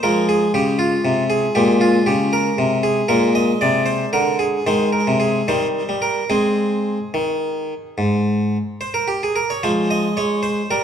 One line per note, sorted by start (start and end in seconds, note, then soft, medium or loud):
0.03 0.44 F3 medium
0.03 1.52 G#3 soft
0.03 0.25 A#4 medium
0.29 0.50 G#4 medium
0.54 0.95 C#3 medium
0.54 0.76 G4 medium
0.79 1.22 F4 medium
1.05 1.45 C3 medium
1.30 1.55 G#4 medium
1.55 1.97 A#2 medium
1.55 3.07 G#3 soft
1.55 1.81 G4 medium
1.81 2.07 F4 medium
2.06 2.49 C#3 medium
2.06 2.33 G4 medium
2.33 2.77 A#4 medium
2.58 3.00 C3 medium
2.83 3.06 G#4 medium
3.08 3.51 A#2 medium
3.08 4.61 G#3 soft
3.08 3.31 A#4 medium
3.35 3.61 D#5 medium
3.61 4.03 C3 medium
3.61 3.87 D5 medium
3.86 4.08 C5 medium
4.13 4.56 D3 soft
4.13 4.35 A#4 medium
4.39 4.66 G#4 medium
4.67 4.99 D#3 soft
4.67 5.44 G#3 soft
4.67 4.89 C5 medium
4.93 5.16 A#4 medium
5.07 5.40 C3 soft
5.20 5.47 G#4 medium
5.48 5.81 D#3 soft
5.48 5.88 G3 soft
5.48 5.95 C5 medium
5.89 6.22 G3 soft
6.02 6.30 A#4 medium
6.30 6.97 G#3 soft
6.30 6.97 C4 soft
6.30 8.90 G#4 medium
7.14 7.72 D#3 soft
7.98 8.56 G#2 soft
8.81 8.94 C5 medium
8.94 9.08 A#4 medium
9.08 9.22 G4 medium
9.23 9.36 G#4 medium
9.36 9.50 A#4 medium
9.50 9.63 C#5 medium
9.63 10.06 F3 medium
9.63 10.17 G#3 soft
9.63 9.90 C5 medium
9.91 10.17 D#5 medium
10.17 10.60 G#3 soft
10.17 10.43 C#5 medium
10.43 10.70 C5 medium
10.70 10.84 G3 soft
10.70 10.84 A#4 medium